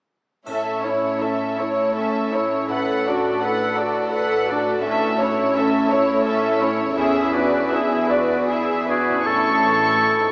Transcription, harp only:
0.46 2.68 A2 soft
0.84 2.33 C#4 soft
1.21 5.11 A4 soft
1.59 2.73 C#5 soft
1.97 2.73 E4 soft
2.34 2.73 C#4 soft
2.69 4.86 A2 soft
3.07 4.50 D4 soft
3.42 4.88 B4 soft
3.78 4.88 D5 soft
4.15 4.89 F#4 soft
4.51 4.89 D4 soft
4.87 7.01 A2 soft
5.21 6.60 C#4 soft
5.56 7.01 A4 soft
5.92 7.01 C#5 soft
6.26 9.17 E4 soft
6.61 7.00 C#4 soft
6.97 9.30 E2 soft
7.34 8.87 D4 soft
7.71 9.30 G#4 soft
8.10 9.30 D5 soft
8.48 9.30 F#4 soft
8.88 9.30 D4 soft
9.09 10.32 A2 soft
9.13 10.32 C#4 soft
9.18 10.29 E4 soft
9.18 10.32 C#5 soft
10.21 10.32 G#2 soft
10.25 10.32 B3 soft

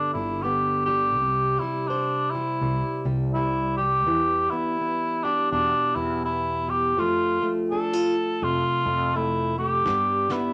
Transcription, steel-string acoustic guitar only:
0.00 1.15 G2 medium
0.00 1.16 D3 medium
0.00 0.87 G3 medium
0.00 0.44 B3 medium
0.00 0.15 D4 soft
0.17 1.17 D4 soft
0.45 1.16 B3 soft
0.88 1.61 G3 soft
1.16 4.03 C3 medium
1.61 2.34 G3 medium
1.90 4.03 C5 medium
2.35 2.61 G3 medium
2.62 3.04 G3 medium
3.06 3.34 G3 medium
3.36 3.78 G3 soft
3.79 6.67 G3 soft
4.07 6.93 E3 medium
4.52 4.80 B3 soft
4.81 5.95 B3 soft
5.25 6.94 G4 soft
5.52 6.93 B2 medium
5.96 6.24 B3 soft
6.26 6.97 B3 soft
6.68 6.97 G3 soft
6.97 9.84 F3 medium
6.97 7.41 A3 medium
7.42 8.85 A3 soft
7.72 7.93 D4 medium
7.93 8.14 F4 soft
8.43 9.84 C3 medium
8.86 9.14 A3 soft
9.16 9.57 A3 soft
9.58 9.83 A3 soft
9.86 10.53 G2 medium
9.86 10.53 G3 medium
9.86 10.30 B3 medium
9.86 10.53 D4 medium
10.31 10.53 B3 medium

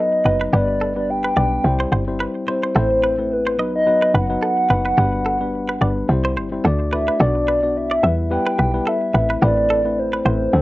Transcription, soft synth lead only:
0.00 0.56 D#5 loud
0.55 0.97 D5 loud
0.98 1.12 D5 loud
1.10 2.21 G5 loud
2.49 2.63 C5 medium
2.64 3.34 C5 loud
3.32 3.75 B4 medium
3.76 4.12 D#5 loud
4.16 6.61 F#5 loud
6.94 7.23 E5 medium
7.22 7.78 D5 loud
7.77 8.32 E5 loud
8.33 8.90 G5 loud
8.88 9.43 E5 loud
9.44 10.01 D5 loud
9.99 10.62 C5 loud

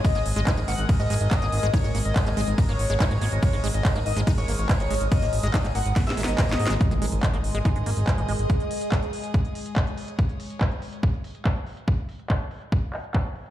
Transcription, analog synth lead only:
0.05 0.18 D#5 loud
0.36 0.50 D#5 loud
0.68 0.81 F#5 loud
1.00 1.08 D#5 medium
1.21 1.65 D#5 loud
1.74 1.87 C#5 loud
2.05 2.19 D#5 loud
2.37 2.50 D#5 loud
2.69 2.77 C#5 medium
2.90 3.34 C#5 loud
3.43 3.56 C#5 loud
3.74 3.88 D#5 medium
4.06 4.19 D#5 loud
4.38 4.47 C#5 medium
4.59 5.03 C#5 loud
5.12 5.25 D#5 loud
5.43 5.57 D#5 loud
5.75 5.88 F#5 loud
6.07 6.16 E5 medium
6.28 6.72 D#5 loud

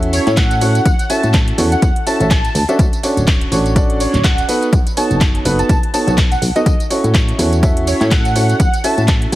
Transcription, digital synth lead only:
0.13 0.22 C#5 medium
0.27 0.33 C#5 medium
0.37 1.06 F#5 loud
1.10 1.25 A5 medium
1.72 1.84 F#5 medium
2.07 2.22 A5 loud
2.31 2.60 A5 medium
4.00 4.09 C#5 medium
4.14 4.21 C#5 medium
4.24 4.54 F#5 medium
4.97 5.12 A5 loud
5.59 5.71 A5 medium
5.94 6.09 A5 loud
6.32 6.44 F#5 loud
6.56 6.72 D#5 loud
7.87 7.96 C#5 medium
8.01 8.08 C#5 medium
8.11 8.80 F#5 loud
8.84 8.99 A5 loud

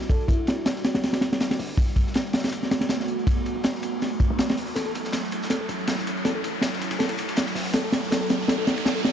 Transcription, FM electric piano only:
0.10 0.27 A4 medium
0.28 0.66 E4 medium
4.75 4.82 A4 medium
4.86 4.91 A4 medium
5.50 5.57 A4 medium
5.61 5.66 A4 medium
6.25 6.32 A4 medium
6.35 6.41 A4 medium
6.99 7.06 A4 medium
7.09 7.15 A4 medium
7.74 7.80 A4 medium
7.84 7.90 A4 medium
8.11 8.18 A4 medium
8.21 8.27 A4 medium
8.48 8.55 A4 medium
8.58 8.64 A4 medium
8.85 8.92 A4 medium
8.95 9.01 A4 medium

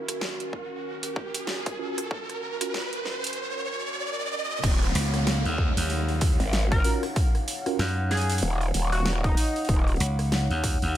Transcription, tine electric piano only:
1.79 1.99 C#4 medium
1.79 1.99 F4 medium
1.79 1.99 F#4 medium
1.79 1.99 A#4 medium
2.61 2.75 C#4 medium
2.61 2.75 F4 medium
2.61 2.75 F#4 medium
2.61 2.75 A#4 medium
6.85 7.04 C#4 medium
6.85 7.04 F4 medium
6.85 7.04 F#4 medium
6.85 7.04 A#4 medium
7.66 7.81 C#4 medium
7.66 7.81 F4 medium
7.66 7.81 F#4 medium
7.66 7.81 A#4 medium

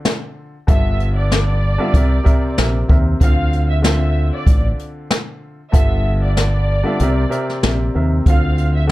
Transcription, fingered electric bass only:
0.69 1.77 G1 loud
1.94 2.19 C2 loud
2.58 2.83 A#1 medium
2.90 3.14 D#2 medium
3.21 4.30 D2 loud
4.47 4.71 A1 medium
5.74 6.82 G1 loud
7.01 7.25 C2 loud
7.64 7.88 A#1 medium
7.95 8.19 D#2 medium
8.27 8.91 D2 loud

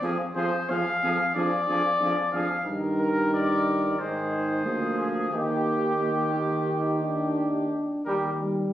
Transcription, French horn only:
0.01 0.17 C4 medium
0.36 0.51 C4 medium
0.69 0.84 C4 medium
1.03 1.17 C4 medium
1.35 1.50 D4 medium
1.67 1.82 D4 medium
2.00 2.15 D4 medium
2.33 2.48 D4 soft
2.65 3.94 D#4 medium
3.98 4.64 D#4 medium
4.65 5.32 A#3 medium
5.32 5.93 A#3 soft
6.01 6.33 A#3 soft
6.35 7.02 D#4 medium
7.03 8.04 D4 medium
8.39 8.73 G3 soft

